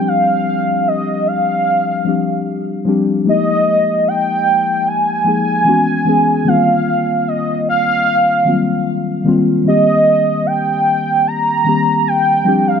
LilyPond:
<<
  \new Staff \with { instrumentName = "Soft synth lead" } { \time 4/4 \key c \minor \tempo 4 = 75 f''4 ees''8 f''2 r8 | ees''4 g''4 aes''2 | f''4 ees''8 f''2 r8 | ees''4 g''4 bes''4 g''8. f''16 | }
  \new Staff \with { instrumentName = "Synth keys" } { \time 4/4 \key c \minor <f g c' d' g'>4 r4. <f g c' d' g'>8. r16 <f g c' d' g'>8 | <f aes bes ees' g'>4. r4 <f aes bes ees' aes'>8 <e gis b cis' fis'>8 <e gis b cis' gis'>8 | <ees g bes c' f'>4. r4 <ees fis g bes c' f'>8. r16 <ees g bes c' f'>8 | <ees g bes c' g'>4. r4 <ees g bes c' g'>8. r16 <f g c' d' g'>8 | }
>>